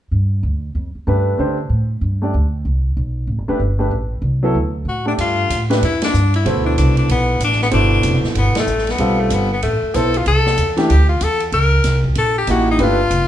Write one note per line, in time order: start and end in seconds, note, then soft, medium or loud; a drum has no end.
0.12 0.42 G2 medium
0.43 0.74 D2 medium
0.75 0.93 F2 medium
0.95 muted upright bass stroke soft
1.07 1.38 G2 medium
1.07 1.37 A3 soft
1.07 1.38 D4 soft
1.07 1.38 G4 soft
1.07 1.39 B4 medium
1.38 1.69 D3 medium
1.38 1.56 A3 medium
1.38 1.57 D4 medium
1.38 1.57 G4 soft
1.38 1.57 C5 medium
1.70 2.01 A2 medium
2.01 2.32 G2 medium
2.22 2.33 A3 soft
2.22 2.33 D4 soft
2.22 2.33 G4 soft
2.22 2.34 D5 medium
2.34 2.64 D2 medium
2.65 2.96 C2 medium
2.97 3.27 B1 medium
3.27 3.38 A1 medium
3.38 3.48 G1 soft
3.48 3.59 E1 medium
3.48 3.59 A3 medium
3.48 3.59 D4 medium
3.48 3.60 G4 medium
3.48 3.60 B4 medium
3.60 3.90 G1 medium
3.79 3.90 A3 soft
3.79 3.91 D4 soft
3.79 3.91 G4 soft
3.79 3.91 B4 medium
3.91 4.21 A1 medium
4.22 4.54 C2 medium
4.43 4.54 F#3 medium
4.43 4.54 B3 medium
4.43 4.55 E4 medium
4.43 4.55 A4 medium
4.55 4.84 D2 medium
4.85 5.17 A2 medium
4.85 5.07 F#4 medium
5.06 5.48 A3 medium
5.06 5.48 D4 soft
5.06 5.13 D4 medium
5.06 5.48 G4 soft
5.06 5.49 D5 medium
5.18 5.49 G2 medium
5.18 5.68 F4 medium
5.18 ride medium
5.50 5.81 A2 medium
5.50 hi-hat pedal medium
5.50 ride medium
5.70 5.81 A3 medium
5.70 5.81 D4 medium
5.70 5.81 G4 medium
5.70 5.81 B4 medium
5.70 snare soft
5.70 ride soft
5.82 6.13 F2 medium
5.82 6.02 E4 medium
5.82 ride medium
6.02 6.33 D4 medium
6.02 snare medium
6.02 ride medium
6.14 6.45 G2 medium
6.14 hi-hat pedal medium
6.34 6.64 E4 medium
6.34 ride soft
6.45 6.77 D2 medium
6.45 7.34 B2 medium
6.45 7.34 E4 soft
6.45 7.34 A4 medium
6.45 7.34 C5 medium
6.45 ride medium
6.66 6.77 D4 medium
6.77 7.08 C2 medium
6.77 6.96 D4 medium
6.77 hi-hat pedal medium
6.77 ride medium
6.97 7.09 D4 medium
6.97 ride soft
7.09 7.39 B1 medium
7.09 7.40 B3 medium
7.09 ride medium
7.40 7.71 A1 medium
7.40 hi-hat pedal medium
7.40 ride medium
7.44 7.61 D4 medium
7.52 snare soft
7.61 7.68 B3 medium
7.61 snare soft
7.71 8.03 G1 medium
7.71 8.60 B2 medium
7.71 8.21 D4 medium
7.71 8.60 E4 medium
7.71 8.61 A4 medium
7.71 8.60 C5 medium
7.71 ride medium
8.03 8.22 F1 medium
8.03 hi-hat pedal soft
8.03 ride medium
8.24 muted upright bass stroke soft
8.24 snare soft
8.35 8.54 G1 medium
8.35 8.56 B3 medium
8.35 ride medium
8.55 muted upright bass stroke soft
8.55 snare medium
8.55 ride medium
8.59 8.92 A3 medium
8.67 8.98 A1 medium
8.67 hi-hat pedal medium
8.78 snare soft
8.87 snare soft
8.87 ride soft
8.91 9.21 B3 medium
8.98 9.30 B1 medium
8.98 9.47 G3 medium
8.98 9.47 C4 medium
8.98 9.47 F4 medium
8.98 9.47 A4 medium
8.98 ride medium
9.20 9.35 A3 medium
9.30 9.62 G1 medium
9.30 9.52 B3 medium
9.30 hi-hat pedal medium
9.30 ride medium
9.53 9.63 B3 medium
9.62 9.82 A1 medium
9.62 9.97 A3 medium
9.62 ride medium
9.82 muted upright bass stroke soft
9.94 10.26 B1 medium
9.94 10.12 B3 medium
9.94 10.13 E4 medium
9.94 10.13 A4 soft
9.94 10.19 A4 medium
9.94 10.13 C5 medium
9.94 hi-hat pedal medium
9.94 ride medium
10.14 10.27 F4 medium
10.14 ride soft
10.26 10.57 C2 medium
10.26 10.75 A4 medium
10.26 ride medium
10.46 snare medium
10.57 10.89 E2 medium
10.57 hi-hat pedal soft
10.57 ride medium
10.77 10.88 E3 medium
10.77 10.89 A3 medium
10.77 10.88 D4 medium
10.77 10.89 G4 medium
10.77 snare soft
10.77 ride soft
10.90 11.20 D2 medium
10.90 11.09 G4 medium
10.90 ride medium
11.09 11.25 F4 medium
11.21 11.52 E2 medium
11.21 11.42 A4 medium
11.21 hi-hat pedal medium
11.21 ride medium
11.40 ride soft
11.52 11.84 C#2 medium
11.52 12.02 A#4 loud
11.52 ride medium
11.84 12.15 C2 medium
11.84 snare soft
11.84 hi-hat pedal medium
11.84 ride medium
12.04 kick medium
12.15 12.47 A#1 medium
12.15 12.36 A4 medium
12.15 ride medium
12.38 12.49 G4 medium
12.47 12.78 A1 medium
12.47 12.80 A#3 medium
12.47 12.80 D#4 medium
12.47 12.81 E4 medium
12.47 12.68 F#4 medium
12.47 12.78 G4 medium
12.47 hi-hat pedal medium
12.47 ride medium
12.71 12.81 D#4 medium
12.78 13.10 G1 medium
12.78 12.97 A3 medium
12.78 12.97 D4 medium
12.78 12.98 G4 medium
12.78 12.98 B4 medium
12.78 ride medium
12.83 13.28 F4 loud
13.10 13.28 F1 medium
13.10 hi-hat pedal medium
13.10 ride medium